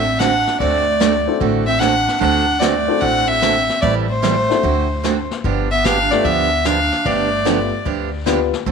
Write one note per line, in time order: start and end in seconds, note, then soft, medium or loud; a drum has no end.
0.00 0.44 A1 medium
0.00 0.21 C4 medium
0.00 0.21 E5 loud
0.19 0.32 D3 medium
0.19 0.32 A3 medium
0.19 0.32 C4 medium
0.19 0.60 D4 medium
0.19 0.32 F#4 medium
0.19 0.32 A4 medium
0.19 0.59 F#5 loud
0.19 snare medium
0.19 hi-hat pedal soft
0.47 snare soft
0.60 1.25 D2 medium
0.60 0.83 D3 medium
0.60 1.37 A3 medium
0.60 0.83 A3 medium
0.60 0.83 C4 medium
0.60 0.83 F#4 medium
0.60 0.84 A4 medium
0.60 1.37 D5 loud
0.60 brush sweep soft
0.60 kick soft
1.00 1.12 D3 medium
1.00 1.12 A3 medium
1.00 1.13 C4 medium
1.00 1.13 F#4 medium
1.00 1.13 A4 medium
1.00 snare medium
1.00 hi-hat pedal medium
1.27 1.78 C4 medium
1.27 1.78 D4 medium
1.27 1.79 E4 medium
1.27 1.79 F#4 medium
1.27 1.79 A4 medium
1.40 2.05 A1 medium
1.40 1.63 D3 medium
1.40 1.64 A3 medium
1.40 1.64 C4 medium
1.40 1.64 F#4 medium
1.40 1.64 A4 medium
1.40 brush sweep soft
1.40 kick soft
1.66 1.81 C4 medium
1.66 1.80 E5 medium
1.79 1.93 D3 medium
1.79 1.93 A3 medium
1.79 1.93 C4 medium
1.79 2.19 D4 medium
1.79 1.93 F#4 medium
1.79 1.93 A4 medium
1.79 2.20 F#5 loud
1.79 snare medium
1.79 hi-hat pedal medium
2.08 snare soft
2.20 2.86 D2 medium
2.20 2.44 D3 medium
2.20 2.44 A3 medium
2.20 2.44 C4 medium
2.20 2.61 D4 medium
2.20 2.44 F#4 medium
2.20 2.44 A4 medium
2.20 2.61 F#5 loud
2.20 brush sweep medium
2.20 kick soft
2.60 2.73 D3 medium
2.60 3.02 A3 medium
2.60 2.73 A3 medium
2.60 2.74 C4 medium
2.60 2.74 F#4 medium
2.60 2.74 A4 medium
2.60 3.02 D5 medium
2.60 snare medium
2.60 hi-hat pedal medium
2.88 3.39 C4 medium
2.88 3.40 D4 medium
2.88 3.40 E4 medium
2.88 3.40 F#4 medium
2.88 3.40 A4 medium
3.01 3.67 A1 medium
3.01 3.24 D3 medium
3.01 3.25 A3 medium
3.01 3.25 C4 medium
3.01 3.28 D4 medium
3.01 3.25 F#4 medium
3.01 3.25 A4 medium
3.01 3.29 F#5 loud
3.01 brush sweep soft
3.01 kick soft
3.27 3.81 C4 medium
3.27 3.81 E5 loud
3.42 3.54 D3 medium
3.42 3.54 A3 medium
3.42 3.55 C4 medium
3.42 3.55 F#4 medium
3.42 3.55 A4 medium
3.42 snare medium
3.42 hi-hat pedal medium
3.69 snare soft
3.81 4.47 A1 medium
3.81 4.05 E3 medium
3.81 4.06 G3 medium
3.81 3.94 A3 medium
3.81 4.06 C4 medium
3.81 4.06 E4 medium
3.81 4.06 A4 medium
3.81 3.94 D5 loud
3.81 brush sweep medium
3.81 kick soft
4.08 5.26 A3 medium
4.08 5.26 C5 medium
4.22 4.35 E3 medium
4.22 4.35 G3 medium
4.22 4.35 C4 medium
4.22 4.35 E4 medium
4.22 4.35 A4 medium
4.22 snare medium
4.22 hi-hat pedal medium
4.49 4.62 C4 medium
4.49 4.62 D4 medium
4.49 4.62 E4 medium
4.49 4.62 F#4 medium
4.49 4.62 A4 medium
4.49 snare soft
4.63 5.28 D2 medium
4.63 4.86 D3 medium
4.63 4.86 A3 soft
4.63 4.86 C4 medium
4.63 4.87 F#4 medium
4.63 4.87 A4 medium
4.63 brush sweep soft
4.63 kick soft
5.04 5.16 D3 medium
5.04 5.16 A3 medium
5.04 5.16 C4 medium
5.04 5.16 F#4 medium
5.04 5.17 A4 medium
5.04 snare medium
5.04 hi-hat pedal medium
5.31 snare soft
5.44 6.09 G1 medium
5.44 5.67 D3 medium
5.44 5.67 F3 medium
5.44 5.67 B3 medium
5.44 5.67 D4 medium
5.44 5.68 G4 medium
5.44 brush sweep soft
5.44 kick soft
5.71 5.87 B3 medium
5.71 5.86 E5 loud
5.84 5.96 D3 medium
5.84 5.97 F3 medium
5.84 5.97 B3 medium
5.84 6.13 D4 medium
5.84 5.97 D4 medium
5.84 5.97 G4 medium
5.84 6.13 F5 loud
5.84 snare medium
5.84 hi-hat pedal medium
6.11 6.28 A3 medium
6.11 6.23 B3 medium
6.11 6.24 D4 medium
6.11 6.24 F4 medium
6.11 6.24 G4 medium
6.11 6.24 A4 medium
6.11 6.26 D5 loud
6.11 snare soft
6.24 6.89 D2 medium
6.24 6.47 D3 medium
6.24 6.48 F3 medium
6.24 6.48 B3 medium
6.24 6.68 B3 medium
6.24 6.48 D4 medium
6.24 6.48 G4 medium
6.24 6.67 E5 loud
6.24 brush sweep soft
6.24 kick soft
6.65 6.77 D3 medium
6.65 6.77 F3 medium
6.65 6.77 B3 medium
6.65 6.78 D4 medium
6.65 7.09 D4 medium
6.65 6.78 G4 medium
6.65 7.08 F5 loud
6.65 snare medium
6.65 hi-hat pedal medium
6.92 snare soft
7.05 7.70 G1 medium
7.05 7.28 D3 medium
7.05 7.28 F3 medium
7.05 7.87 A3 medium
7.05 7.28 B3 medium
7.05 7.28 D4 medium
7.05 7.29 G4 medium
7.05 7.86 D5 medium
7.05 brush sweep medium
7.05 kick soft
7.45 7.57 D3 medium
7.45 7.58 F3 medium
7.45 7.70 B3 medium
7.45 7.58 B3 medium
7.45 7.70 D4 medium
7.45 7.58 D4 medium
7.45 7.70 F4 medium
7.45 7.70 G4 medium
7.45 7.58 G4 medium
7.45 7.70 A4 medium
7.45 snare medium
7.45 hi-hat pedal medium
7.85 8.50 D2 medium
7.85 8.08 D3 medium
7.85 8.09 F3 medium
7.85 8.09 B3 medium
7.85 8.09 D4 medium
7.85 8.09 G4 medium
7.85 brush sweep soft
7.85 kick soft
8.26 8.38 D3 medium
8.26 8.38 F3 medium
8.26 8.50 B3 medium
8.26 8.38 B3 medium
8.26 8.50 D4 medium
8.26 8.39 D4 medium
8.26 8.51 F4 medium
8.26 8.51 G4 medium
8.26 8.39 G4 medium
8.26 8.51 B4 medium
8.26 snare medium
8.26 hi-hat pedal medium
8.53 snare soft
8.66 8.72 D2 medium
8.66 8.72 D3 medium
8.66 8.72 A3 medium
8.66 8.72 C4 medium
8.66 8.72 F#4 medium
8.66 8.72 A4 medium
8.66 brush sweep soft
8.66 kick soft